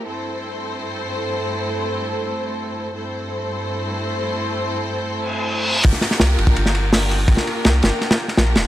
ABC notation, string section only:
X:1
M:4/4
L:1/8
Q:1/4=166
K:Gdor
V:1 name="String section"
[G,,A,CEAc]8- | [G,,A,CEAc]8 | [G,,A,CEAc]8- | [G,,A,CEAc]8 |
[B,DFGB]6 [B,DFGB]2 | [B,DFGB]6 [B,DFGB]2 |]